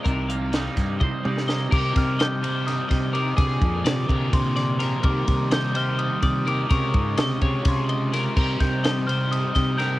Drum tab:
CC |--------------|x-------------|--------------|--------------|
RD |--------------|--x-x-x-x-x-x-|x-x-x-x-x-x-x-|x-x-x-x-x-x-x-|
HH |x-x-x-x-------|--------------|--------------|--------------|
SD |----o-o----oo-|--o-o---o-o---|----o-----o-o-|----o---------|
T1 |--------o-----|--------------|--------------|--------------|
T2 |----------o---|--------------|--------------|--------------|
BD |o-----o-o-----|o-o-------o---|o-o---o-o-----|o-o-------o---|

CC |--------------|x-------------|
RD |x-x-x-x-x-x-x-|--x-x-x-x-x-x-|
HH |--------------|--------------|
SD |----o---o---o-|--o-o-----o-o-|
T1 |--------------|--------------|
T2 |--------------|--------------|
BD |o-o---o-o-----|o-o-------o---|